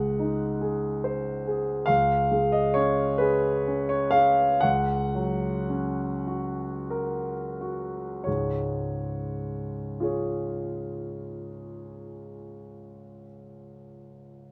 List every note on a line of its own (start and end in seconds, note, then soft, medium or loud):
0.00 1.85 C#2 soft
0.00 0.46 G#3 soft
0.00 1.46 F#5 soft
0.19 0.87 D#4 soft
0.61 1.30 G#4 soft
1.04 1.72 C5 soft
1.47 1.89 G#4 soft
1.86 4.58 C#2 soft
1.86 2.52 F5 medium
2.31 3.03 G#3 soft
2.52 2.75 D#5 medium
2.74 3.48 C#4 soft
2.74 3.20 C#5 medium
3.18 3.95 G#4 soft
3.18 3.89 B4 medium
3.68 4.43 C#4 soft
3.89 4.13 C#5 medium
4.11 4.62 G#4 soft
4.11 4.61 F5 medium
4.61 8.22 C#2 soft
4.61 7.59 F#5 medium
5.15 6.04 F#3 soft
5.69 6.64 C#4 soft
6.27 7.32 F#4 soft
6.90 8.01 A#4 soft
7.61 8.26 F#4 soft
8.24 11.48 C#2 soft
8.24 11.49 G#2 soft
8.24 10.03 C#5 soft
10.00 13.22 F4 soft
10.00 13.24 G#4 soft
10.00 13.26 C#5 soft